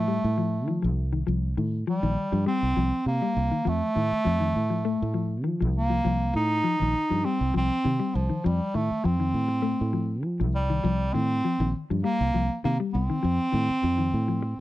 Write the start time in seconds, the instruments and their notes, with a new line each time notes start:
Already playing: fingered electric bass A2, bass clarinet A3
0.08 clean electric guitar G3
0.24 fingered electric bass A2
0.38 clean electric guitar F3
0.68 clean electric guitar D#3, fingered electric bass F3
0.82 fingered electric bass C2, clean electric guitar F3
1.13 clean electric guitar D#3
1.27 fingered electric bass C2, clean electric guitar F3
1.57 fingered electric bass A2, clean electric guitar D#3
1.87 clean electric guitar F3, bass clarinet G3
2.03 fingered electric bass A#1, clean electric guitar D#3
2.32 fingered electric bass G2, clean electric guitar F3
2.46 clean electric guitar G3, bass clarinet C4
2.63 fingered electric bass C2
2.77 fingered electric bass C2, clean electric guitar F3
3.06 fingered electric bass C3, bass clarinet A#3, muted clean electric guitar stroke
3.22 clean electric guitar G3
3.37 fingered electric bass C2
3.51 clean electric guitar D#3
3.65 fingered electric bass F2, clean electric guitar F3, bass clarinet A3
3.96 fingered electric bass A2, clean electric guitar D#3
4.12 muted fingered electric bass stroke
4.25 fingered electric bass F2, clean electric guitar F3
4.40 clean electric guitar D#3
4.56 fingered electric bass A2
4.70 clean electric guitar F3
4.85 clean electric guitar A3
5.02 fingered electric bass A2
5.14 clean electric guitar F3
5.44 clean electric guitar D#3, fingered electric bass F3
5.61 fingered electric bass C2, clean electric guitar F3
5.77 bass clarinet A#3
5.90 clean electric guitar F3
6.04 fingered electric bass C2, clean electric guitar F3
6.34 fingered electric bass A2, bass clarinet D#4, muted clean electric guitar stroke
6.64 clean electric guitar F3
6.79 fingered electric bass A#1, clean electric guitar D#3
7.10 fingered electric bass G2, clean electric guitar F3
7.25 clean electric guitar G3, bass clarinet C4
7.41 fingered electric bass C2
7.54 fingered electric bass C2, clean electric guitar F3, bass clarinet C4
7.84 fingered electric bass C3, clean electric guitar D#3
8.00 clean electric guitar G3
8.15 fingered electric bass C2, bass clarinet F3
8.30 clean electric guitar D#3
8.44 fingered electric bass F2, clean electric guitar F3, bass clarinet G3
8.74 fingered electric bass A2, clean electric guitar D#3, bass clarinet A3
8.91 muted fingered electric bass stroke
9.04 fingered electric bass F2, clean electric guitar F3, bass clarinet C4
9.20 clean electric guitar D#3
9.34 fingered electric bass A2
9.48 muted clean electric guitar stroke
9.62 clean electric guitar A3
9.81 fingered electric bass A2
9.93 clean electric guitar F3
10.23 fingered electric bass F3, muted clean electric guitar stroke
10.40 fingered electric bass C2, clean electric guitar F3
10.55 bass clarinet G3
10.70 clean electric guitar D#3
10.84 fingered electric bass C2, clean electric guitar F3
11.13 fingered electric bass A2, clean electric guitar D#3, bass clarinet C4
11.45 clean electric guitar F3
11.60 fingered electric bass A#1, clean electric guitar D#3
11.90 fingered electric bass G2, clean electric guitar F3
12.03 clean electric guitar G3, bass clarinet A#3
12.21 fingered electric bass C2
12.34 fingered electric bass C2, clean electric guitar F3
12.64 fingered electric bass C3, clean electric guitar D#3, bass clarinet A#3
12.80 clean electric guitar G3
12.94 fingered electric bass C2, bass clarinet C4
13.10 clean electric guitar D#3
13.23 fingered electric bass F2, clean electric guitar F3
13.52 fingered electric bass A2, clean electric guitar D#3
13.70 muted fingered electric bass stroke
13.83 fingered electric bass F2, clean electric guitar F3
13.98 clean electric guitar D#3
14.14 fingered electric bass A2
14.28 clean electric guitar F3
14.43 muted clean electric guitar stroke